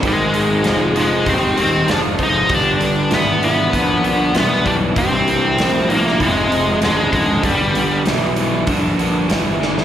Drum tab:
HH |o-o-o-o-o-o-o-o-|o-o-o-o-o-o-o-o-|o-o-o-o-o-o-o-o-|o-o-o-o-o-o-o---|
SD |----o-------o---|----o-------o---|----o--o----o---|----o-------o-oo|
BD |o-------o-----o-|o-------o-----o-|o-------o-----o-|o-------o-------|